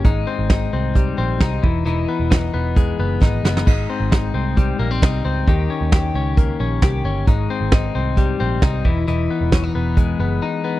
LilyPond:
<<
  \new Staff \with { instrumentName = "Clean electric guitar" } { \time 4/4 \key aes \major \tempo 4 = 133 <aes, ees'>8 c'8 ees'8 c'8 g8 c'8 ees'8 e8 | <e dis'>8 b8 dis'8 b8 gis8 b8 dis'8 b8 | <aes, ees'>8 c'8 ees'8 c'8 g8 bes16 c'16 ees'8 c'8 | <ees g'>8 des'8 g'8 des'8 bes8 des'8 g'8 des'8 |
<aes, ees'>8 c'8 ees'8 c'8 g8 c'8 ees'8 e8 | <e dis'>8 b8 des'16 dis'16 b8 gis8 b8 dis'8 b8 | }
  \new Staff \with { instrumentName = "Picked electric bass" } { \clef bass \time 4/4 \key aes \major aes,,8 r16 aes,,8. c,4 bes,,8 c,8 e,,8 | e,,8 r16 e,,8. e,,4 ges,,8 gis,,8 ges,,8 | aes,,8 r16 aes,,8. c,4 bes,,8 c,8 des,8 | ees,8 r16 ees,8. des,4 bes,,8 c,8 g,,8 |
aes,,8 r16 aes,,8. c,4 bes,,8 c,8 e,,8 | e,,8 r16 e,,8. e,,4 ges,,8 r4 | }
  \new DrumStaff \with { instrumentName = "Drums" } \drummode { \time 4/4 <hh bd>4 <hh bd sn>4 <hh bd>4 <hh bd sn>8 bd8 | hh4 <hh bd sn>4 <hh bd>4 <bd sn>8 sn16 sn16 | <cymc bd>4 <hh bd sn>4 <hh bd>4 <hh bd sn>4 | <hh bd>4 <hh bd sn>4 <hh bd>4 <hh bd sn>4 |
<hh bd>4 <hh bd sn>4 <hh bd>4 <hh bd sn>8 bd8 | hh4 <hh bd sn>4 <hh bd>4 r4 | }
>>